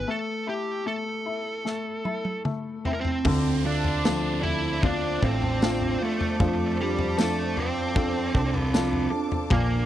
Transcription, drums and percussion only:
1.66 snare soft
2.05 high tom medium
2.25 high tom soft
2.45 mid tom medium
2.85 floor tom medium
3.05 floor tom medium
3.25 kick loud
3.25 floor tom loud
3.25 crash medium
3.84 floor tom medium
4.05 snare loud
4.05 tambourine medium
4.44 floor tom medium
4.83 kick loud
4.83 floor tom medium
5.23 kick medium
5.42 floor tom medium
5.62 snare loud
5.62 tambourine medium
5.82 floor tom medium
6.21 floor tom medium
6.40 kick loud
6.40 floor tom medium
6.99 floor tom medium
7.19 snare loud
7.19 tambourine medium
7.57 floor tom medium
7.96 kick loud
7.96 floor tom medium
8.35 kick medium
8.54 floor tom medium
8.74 snare loud
8.74 tambourine medium
8.93 floor tom medium
9.32 floor tom medium
9.50 kick loud
9.50 floor tom loud

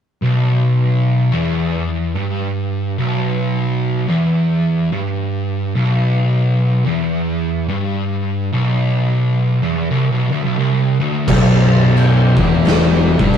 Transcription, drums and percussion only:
11.28 kick loud
11.28 crash loud
11.28 crash medium
11.97 crash medium
12.37 kick loud
12.65 snare loud
12.65 crash medium
13.19 kick loud
13.34 crash medium

